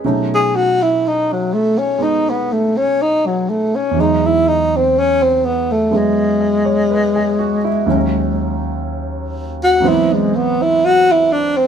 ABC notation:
X:1
M:4/4
L:1/16
Q:"Swing" 1/4=61
K:E
V:1 name="Tenor saxophone"
z G F E D F, A, C D B, A, C D F, A, C | D E D =C ^C =C B, A, G,8- | G,4 z3 F E G, B, E F E =D ^B, |]
V:2 name="Grand piano"
G z12 z3 | z8 z2 d c B G F E | z16 |]
V:3 name="Grand piano" clef=bass
[B,,F,A,CD]8 [G,B,D]8 | [E,,E,F,G,D]8 [F,G,B,E]8 | [D,,D,F,C]8 [G,,E,F,B,^B,]8 |]